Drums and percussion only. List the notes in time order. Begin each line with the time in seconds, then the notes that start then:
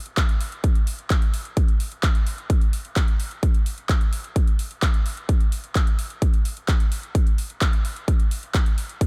0.06 closed hi-hat
0.17 kick, clap, closed hi-hat
0.29 closed hi-hat
0.41 open hi-hat
0.52 closed hi-hat
0.64 kick, closed hi-hat
0.75 closed hi-hat
0.87 open hi-hat
0.99 closed hi-hat
1.10 kick, clap, closed hi-hat
1.22 closed hi-hat
1.34 open hi-hat
1.45 closed hi-hat
1.57 kick, closed hi-hat
1.68 closed hi-hat
1.80 open hi-hat
1.92 closed hi-hat
2.03 kick, clap, closed hi-hat
2.15 closed hi-hat
2.27 open hi-hat
2.38 closed hi-hat
2.50 kick, closed hi-hat
2.61 closed hi-hat
2.73 open hi-hat
2.85 closed hi-hat
2.96 kick, clap, closed hi-hat
3.08 closed hi-hat
3.20 open hi-hat
3.31 closed hi-hat
3.43 kick, closed hi-hat
3.55 closed hi-hat
3.66 open hi-hat
3.78 closed hi-hat
3.89 kick, clap, closed hi-hat
4.01 closed hi-hat
4.13 open hi-hat
4.24 closed hi-hat
4.36 kick, closed hi-hat
4.47 closed hi-hat
4.59 open hi-hat
4.71 closed hi-hat
4.82 kick, clap, closed hi-hat
4.94 closed hi-hat
5.06 open hi-hat
5.17 closed hi-hat
5.29 kick, closed hi-hat
5.41 closed hi-hat
5.52 open hi-hat
5.64 closed hi-hat
5.75 kick, clap, closed hi-hat
5.87 closed hi-hat
5.99 open hi-hat
6.10 closed hi-hat
6.22 kick, closed hi-hat
6.34 closed hi-hat
6.45 open hi-hat
6.57 closed hi-hat
6.68 kick, clap, closed hi-hat
6.80 closed hi-hat
6.92 open hi-hat
7.03 closed hi-hat
7.15 kick, closed hi-hat
7.27 closed hi-hat
7.38 open hi-hat
7.50 closed hi-hat
7.61 kick, clap, closed hi-hat
7.73 closed hi-hat
7.85 open hi-hat
7.96 closed hi-hat
8.08 kick, closed hi-hat
8.20 closed hi-hat
8.31 open hi-hat
8.43 closed hi-hat
8.55 kick, clap, closed hi-hat
8.66 closed hi-hat
8.78 open hi-hat
8.89 closed hi-hat
9.01 kick, closed hi-hat